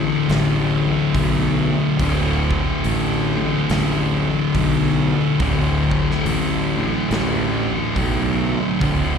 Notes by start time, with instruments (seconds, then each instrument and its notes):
Already playing: distorted electric guitar D2 A2 D3
0.00 distorted electric guitar D2
0.28 fingered electric bass A1, distorted electric guitar D2 A2 D3, snare, open hi-hat
1.14 fingered electric bass B1, kick, open hi-hat
1.98 fingered electric bass D1, distorted electric guitar D2 A2 D3, kick, open hi-hat
2.51 kick
2.84 fingered electric bass A1, open hi-hat
3.36 distorted electric guitar D2 A2 D3
3.69 fingered electric bass A1, distorted electric guitar D2 A2 D3, snare, open hi-hat
4.54 fingered electric bass B1, kick, open hi-hat
5.40 fingered electric bass D1, distorted electric guitar D2 A2, kick, open hi-hat
5.44 distorted electric guitar D3
5.91 kick
6.11 snare
6.25 fingered electric bass A1, open hi-hat
6.77 distorted electric guitar D2 A2 D3
7.09 fingered electric bass A1, distorted electric guitar D2 A2 D3, snare, open hi-hat
7.96 fingered electric bass B1, kick, open hi-hat
8.80 fingered electric bass D1, distorted electric guitar D2 A2 D3, kick, open hi-hat